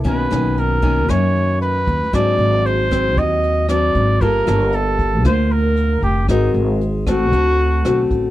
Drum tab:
HH |xxxxxxxx|xxx-xxxx|xxxxxxxx|xxxxxxxx|
SD |-r--r---|r--r--r-|-r--r---|r--r--r-|
BD |o--oo--o|o--oo--o|o--oo--o|o--oo--o|